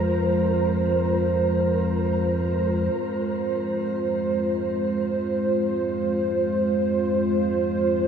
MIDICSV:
0, 0, Header, 1, 4, 480
1, 0, Start_track
1, 0, Key_signature, -4, "minor"
1, 0, Tempo, 500000
1, 7752, End_track
2, 0, Start_track
2, 0, Title_t, "Synth texture"
2, 0, Program_c, 0, 99
2, 0, Note_on_c, 0, 70, 67
2, 2847, Note_off_c, 0, 70, 0
2, 7752, End_track
3, 0, Start_track
3, 0, Title_t, "Analog synth pad"
3, 0, Program_c, 1, 89
3, 0, Note_on_c, 1, 56, 70
3, 0, Note_on_c, 1, 65, 72
3, 0, Note_on_c, 1, 72, 84
3, 7752, Note_off_c, 1, 56, 0
3, 7752, Note_off_c, 1, 65, 0
3, 7752, Note_off_c, 1, 72, 0
3, 7752, End_track
4, 0, Start_track
4, 0, Title_t, "Synth drone"
4, 0, Program_c, 2, 95
4, 0, Note_on_c, 2, 41, 70
4, 0, Note_on_c, 2, 53, 69
4, 2796, Note_off_c, 2, 53, 0
4, 2797, Note_off_c, 2, 41, 0
4, 2808, Note_on_c, 2, 53, 74
4, 2809, Note_on_c, 2, 41, 70
4, 7752, Note_off_c, 2, 41, 0
4, 7752, Note_off_c, 2, 53, 0
4, 7752, End_track
0, 0, End_of_file